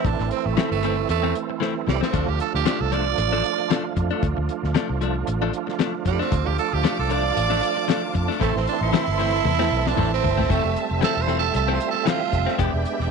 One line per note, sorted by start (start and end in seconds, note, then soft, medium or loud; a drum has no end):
0.00 2.09 E3 medium
0.00 2.10 A3 medium
0.00 2.10 C4 medium
0.00 2.11 E4 medium
0.05 0.17 A1 medium
0.05 0.31 D4 medium
0.05 kick loud
0.05 closed hi-hat medium
0.19 0.30 A1 medium
0.19 muted clean electric guitar stroke soft
0.19 snare soft
0.31 0.47 C4 medium
0.31 closed hi-hat medium
0.46 0.56 A1 medium
0.46 0.71 A3 medium
0.57 0.72 E3 medium
0.57 0.71 A3 medium
0.57 0.70 C4 medium
0.57 snare loud
0.57 closed hi-hat medium
0.71 1.04 G1 medium
0.71 1.08 A3 medium
0.71 muted clean electric guitar stroke soft
0.83 0.98 E3 medium
0.83 0.97 A3 medium
0.83 0.96 C4 medium
0.83 closed hi-hat medium
0.98 muted clean electric guitar stroke soft
1.09 1.32 E2 medium
1.09 1.35 A3 loud
1.09 muted clean electric guitar stroke soft
1.09 closed hi-hat medium
1.23 1.34 E3 medium
1.23 1.35 A3 medium
1.23 1.35 C4 medium
1.35 muted clean electric guitar stroke soft
1.35 closed hi-hat medium
1.50 muted clean electric guitar stroke soft
1.60 1.75 E3 medium
1.60 1.75 A3 medium
1.60 1.74 C4 medium
1.60 snare medium
1.75 muted clean electric guitar stroke soft
1.87 2.00 C2 medium
1.87 2.02 G3 medium
1.87 muted clean electric guitar stroke soft
1.87 snare medium
2.01 2.12 A3 soft
2.01 2.13 C4 soft
2.01 2.30 C4 medium
2.01 snare medium
2.13 2.26 D2 medium
2.13 6.28 F3 medium
2.13 2.28 F3 medium
2.13 2.27 A3 medium
2.13 6.28 A3 medium
2.13 2.26 D4 medium
2.13 6.29 D4 medium
2.13 6.29 F4 medium
2.13 kick loud
2.13 closed hi-hat medium
2.27 2.39 D2 medium
2.27 2.40 G4 medium
2.27 muted clean electric guitar stroke soft
2.40 2.54 A4 medium
2.40 closed hi-hat medium
2.55 2.65 D2 medium
2.55 2.82 G4 medium
2.55 snare soft
2.65 2.80 F3 medium
2.65 2.80 A3 medium
2.65 2.79 D4 medium
2.65 snare loud
2.65 closed hi-hat medium
2.80 3.14 C2 medium
2.80 2.94 A4 medium
2.80 muted clean electric guitar stroke soft
2.92 3.07 F3 medium
2.92 3.06 A3 medium
2.92 3.05 D4 medium
2.92 3.94 D5 loud
2.92 closed hi-hat medium
3.06 muted clean electric guitar stroke soft
3.18 3.41 A1 medium
3.18 muted clean electric guitar stroke soft
3.18 closed hi-hat medium
3.32 3.43 F3 medium
3.32 3.44 A3 medium
3.32 3.44 D4 medium
3.44 closed hi-hat medium
3.59 muted clean electric guitar stroke soft
3.70 3.85 F3 medium
3.70 3.85 A3 medium
3.70 3.84 D4 medium
3.70 snare loud
3.70 closed hi-hat medium
3.85 muted clean electric guitar stroke soft
3.97 4.09 F2 medium
3.97 muted clean electric guitar stroke soft
3.97 kick medium
3.97 closed hi-hat medium
4.11 4.27 A3 soft
4.11 4.26 D4 medium
4.23 4.35 D2 medium
4.23 kick loud
4.23 closed hi-hat medium
4.37 4.48 D2 medium
4.37 muted clean electric guitar stroke soft
4.49 closed hi-hat medium
4.63 4.74 D2 medium
4.63 snare soft
4.75 4.90 F3 medium
4.75 4.90 A3 medium
4.75 4.88 D4 loud
4.75 snare loud
4.75 closed hi-hat medium
4.90 5.23 C2 medium
4.90 muted clean electric guitar stroke medium
5.01 5.16 F3 medium
5.01 5.16 A3 medium
5.01 5.14 D4 medium
5.01 closed hi-hat medium
5.16 muted clean electric guitar stroke medium
5.27 5.50 A1 medium
5.27 muted clean electric guitar stroke soft
5.27 closed hi-hat medium
5.42 5.52 F3 medium
5.42 5.53 A3 medium
5.42 5.53 D4 medium
5.53 closed hi-hat medium
5.67 muted clean electric guitar stroke soft
5.67 snare soft
5.79 5.94 F3 medium
5.79 5.93 A3 medium
5.79 5.93 D4 medium
5.79 snare loud
5.79 closed hi-hat medium
5.94 muted clean electric guitar stroke soft
6.05 6.18 F2 medium
6.05 6.22 G3 loud
6.05 muted clean electric guitar stroke soft
6.05 kick medium
6.05 closed hi-hat medium
6.19 6.36 A3 soft
6.19 6.48 C4 medium
6.19 6.35 D4 medium
6.19 snare soft
6.30 6.45 D2 medium
6.30 8.36 F3 medium
6.30 8.37 A3 medium
6.30 8.37 D4 medium
6.30 8.38 F4 medium
6.30 8.39 F5 medium
6.30 12.55 A5 medium
6.30 8.39 D6 medium
6.30 kick loud
6.30 closed hi-hat medium
6.46 6.57 D2 medium
6.46 6.58 G4 medium
6.46 muted clean electric guitar stroke soft
6.58 6.75 A4 medium
6.58 closed hi-hat medium
6.73 6.83 D2 medium
6.73 6.99 G4 medium
6.84 6.99 F3 medium
6.84 6.98 A3 medium
6.84 6.97 D4 medium
6.84 snare loud
6.84 closed hi-hat medium
6.98 7.32 C2 medium
6.98 7.14 A4 loud
6.98 muted clean electric guitar stroke soft
7.09 7.24 F3 medium
7.09 7.24 A3 medium
7.09 7.23 D4 medium
7.09 8.13 D5 loud
7.09 closed hi-hat medium
7.24 muted clean electric guitar stroke soft
7.35 7.59 A1 medium
7.35 muted clean electric guitar stroke soft
7.35 closed hi-hat medium
7.50 7.61 F3 medium
7.50 7.62 A3 medium
7.50 7.62 D4 medium
7.62 muted clean electric guitar stroke soft
7.62 closed hi-hat medium
7.77 muted clean electric guitar stroke medium
7.88 8.03 F3 medium
7.88 8.02 A3 medium
7.88 8.01 D4 medium
7.88 snare loud
7.88 closed hi-hat medium
8.03 muted clean electric guitar stroke soft
8.14 8.28 F2 medium
8.14 muted clean electric guitar stroke soft
8.14 kick medium
8.14 closed hi-hat medium
8.28 8.40 A3 soft
8.28 8.41 D4 medium
8.28 snare soft
8.39 8.54 A1 medium
8.39 10.45 E3 medium
8.39 8.55 E3 medium
8.39 10.46 A3 medium
8.39 8.54 A3 medium
8.39 8.55 A3 medium
8.39 8.53 C4 medium
8.39 10.46 C4 medium
8.39 10.47 E4 medium
8.39 12.55 E5 medium
8.39 10.48 C6 medium
8.39 kick loud
8.39 closed hi-hat medium
8.54 8.66 A1 medium
8.54 8.67 C4 medium
8.54 muted clean electric guitar stroke soft
8.54 snare soft
8.67 8.81 D4 medium
8.67 closed hi-hat medium
8.81 8.91 A1 medium
8.81 9.89 E4 loud
8.93 9.07 E3 medium
8.93 9.07 A3 medium
8.93 9.05 C4 medium
8.93 snare loud
8.93 closed hi-hat medium
9.07 9.40 G1 medium
9.07 muted clean electric guitar stroke soft
9.18 9.33 E3 medium
9.18 9.33 A3 medium
9.18 9.32 C4 medium
9.18 closed hi-hat medium
9.33 muted clean electric guitar stroke soft
9.45 9.68 E2 medium
9.45 muted clean electric guitar stroke soft
9.45 high tom medium
9.59 9.70 E3 medium
9.59 9.71 A3 medium
9.59 9.71 C4 medium
9.59 snare medium
9.72 9.95 B1 medium
9.86 10.12 D4 medium
9.86 muted clean electric guitar stroke soft
9.86 snare medium
9.97 10.21 A1 medium
9.97 10.12 E3 medium
9.97 10.12 A3 medium
9.97 10.10 C4 medium
9.97 mid tom medium
10.11 10.50 C4 medium
10.11 muted clean electric guitar stroke soft
10.23 10.47 G1 medium
10.23 muted clean electric guitar stroke soft
10.23 floor tom medium
10.38 10.49 A3 soft
10.38 10.49 C4 soft
10.38 floor tom medium
10.49 10.63 F1 medium
10.49 10.64 E3 medium
10.49 12.54 G3 medium
10.49 12.55 A3 medium
10.49 10.64 A3 medium
10.49 10.76 A3 medium
10.49 12.55 C4 medium
10.49 10.63 C4 medium
10.49 12.57 F4 medium
10.49 12.56 E5 medium
10.49 kick loud
10.49 closed hi-hat medium
10.64 10.75 F1 medium
10.64 muted clean electric guitar stroke soft
10.76 closed hi-hat medium
10.91 11.01 F1 medium
11.01 11.16 E3 medium
11.01 11.16 A3 medium
11.01 11.15 C4 medium
11.01 11.23 A4 loud
11.01 snare loud
11.01 closed hi-hat medium
11.16 11.50 E1 medium
11.16 muted clean electric guitar stroke soft
11.21 11.38 C5 medium
11.27 11.42 E3 medium
11.27 11.42 A3 medium
11.27 11.42 C4 medium
11.27 closed hi-hat medium
11.39 11.55 A4 medium
11.39 muted clean electric guitar stroke soft
11.54 11.77 C2 medium
11.54 11.76 A4 medium
11.54 muted clean electric guitar stroke soft
11.54 closed hi-hat medium
11.68 11.79 E3 medium
11.68 11.79 A3 medium
11.68 11.80 C4 medium
11.74 11.90 C5 medium
11.80 muted clean electric guitar stroke soft
11.80 closed hi-hat medium
11.91 12.09 A4 medium
11.91 muted clean electric guitar stroke soft
12.06 12.21 E3 medium
12.06 12.20 A3 medium
12.06 12.19 C4 medium
12.06 12.58 F4 loud
12.06 snare loud
12.06 closed hi-hat medium
12.21 muted clean electric guitar stroke soft
12.32 12.46 F1 medium
12.32 muted clean electric guitar stroke soft
12.32 kick medium
12.32 closed hi-hat medium
12.46 12.58 A3 soft
12.46 12.59 C4 medium
12.46 snare soft
12.58 12.71 E1 medium
12.58 13.11 G#3 medium
12.58 12.73 G#3 medium
12.58 12.72 B3 medium
12.58 13.11 B3 medium
12.58 12.72 D4 medium
12.58 13.11 D4 medium
12.58 12.71 G4 medium
12.58 13.11 G4 medium
12.58 13.11 D5 medium
12.58 13.11 E5 medium
12.58 13.11 G5 medium
12.58 kick loud
12.58 closed hi-hat medium
12.73 12.84 E1 medium
12.73 muted clean electric guitar stroke soft
12.85 closed hi-hat medium
13.00 13.10 E1 medium
13.00 snare soft